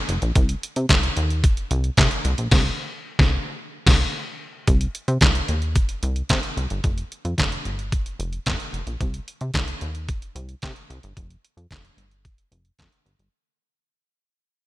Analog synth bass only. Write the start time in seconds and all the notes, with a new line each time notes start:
0.09 F1
0.22 A#1
0.35 C2
0.76 C3
0.89 C2
1.17 D#2
1.71 C2
1.98 C3
2.25 C2
2.38 A#1
2.51 C2
3.19 C2
3.86 C2
4.68 C2
5.08 C3
5.21 C2
5.49 D#2
6.03 C2
6.30 C3
6.57 C2
6.71 G1
6.84 F1
7.25 F2
7.38 F1
7.65 G1
8.19 F1
8.46 F2
8.73 F1
8.87 A#1
9.01 C2
9.41 C3
9.54 C2
9.82 D#2
10.35 C2
10.63 C3
10.90 C2
11.04 G1
11.17 F1
11.57 F2
11.71 F1
11.97 G1
12.52 F1
12.79 F2
13.06 G1
13.19 G1